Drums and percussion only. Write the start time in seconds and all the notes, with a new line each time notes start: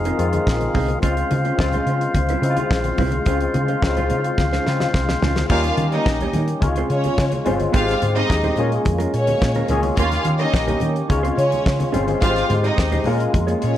0.04 closed hi-hat, muted conga
0.19 closed hi-hat
0.33 closed hi-hat, high conga
0.47 kick, snare
0.61 closed hi-hat, muted conga, high conga
0.74 kick, open hi-hat, low conga
0.88 closed hi-hat, high conga
1.02 kick, closed hi-hat, muted conga
1.17 closed hi-hat
1.31 closed hi-hat, high conga
1.45 closed hi-hat
1.58 kick, snare, muted conga
1.72 closed hi-hat, muted conga, high conga, low conga
1.87 closed hi-hat
2.01 closed hi-hat
2.14 kick, closed hi-hat, muted conga, high conga
2.27 closed hi-hat, muted conga
2.43 closed hi-hat
2.57 closed hi-hat, high conga
2.71 kick, snare
2.84 closed hi-hat, muted conga, high conga
2.98 kick, open hi-hat, low conga
3.12 closed hi-hat, high conga
3.25 kick, closed hi-hat, muted conga
3.40 closed hi-hat
3.54 closed hi-hat, high conga
3.68 closed hi-hat
3.82 kick, snare, muted conga
3.97 closed hi-hat, high conga, low conga
4.10 closed hi-hat
4.24 closed hi-hat
4.38 kick, snare, high conga
4.51 snare, muted conga
4.67 snare
4.80 snare, high conga
4.94 kick, snare
5.08 snare, high conga
5.22 snare, low conga
5.36 snare, high conga
5.50 kick, crash
5.64 closed hi-hat
5.77 closed hi-hat, high conga
5.92 closed hi-hat
6.06 kick, snare
6.21 closed hi-hat, muted conga, high conga, low conga
6.33 closed hi-hat, low conga
6.48 closed hi-hat
6.62 kick, closed hi-hat, muted conga, high conga
6.76 closed hi-hat, muted conga
6.90 closed hi-hat
7.04 closed hi-hat, high conga
7.18 kick, snare, muted conga
7.32 closed hi-hat, muted conga, high conga
7.46 closed hi-hat, low conga
7.60 closed hi-hat, high conga
7.73 kick, closed hi-hat, muted conga
7.88 snare, closed hi-hat, muted conga
8.02 closed hi-hat, high conga
8.16 closed hi-hat
8.30 kick, snare, muted conga
8.44 closed hi-hat, muted conga, high conga, low conga
8.56 closed hi-hat, low conga
8.72 closed hi-hat
8.85 kick, closed hi-hat, muted conga, high conga
8.98 closed hi-hat, muted conga
9.14 closed hi-hat
9.27 closed hi-hat, high conga
9.41 kick, snare, muted conga
9.55 closed hi-hat, high conga
9.68 closed hi-hat, low conga
9.83 closed hi-hat, high conga
9.97 kick, closed hi-hat
10.12 snare, closed hi-hat, muted conga
10.25 closed hi-hat, high conga
10.39 closed hi-hat
10.53 kick, snare, muted conga
10.67 closed hi-hat, muted conga, high conga, low conga
10.80 closed hi-hat, low conga
10.96 closed hi-hat
11.10 kick, closed hi-hat, muted conga, high conga
11.25 closed hi-hat
11.39 closed hi-hat
11.52 closed hi-hat, high conga
11.66 kick, snare, muted conga
11.80 closed hi-hat, muted conga, high conga
11.94 closed hi-hat, low conga
12.08 closed hi-hat, high conga
12.22 kick, closed hi-hat, muted conga
12.36 snare, closed hi-hat, muted conga
12.50 closed hi-hat, high conga
12.64 closed hi-hat
12.78 kick, snare, muted conga
12.92 closed hi-hat, muted conga, high conga, low conga
13.04 open hi-hat, low conga
13.20 closed hi-hat
13.34 kick, closed hi-hat, muted conga, high conga
13.48 closed hi-hat, muted conga
13.62 closed hi-hat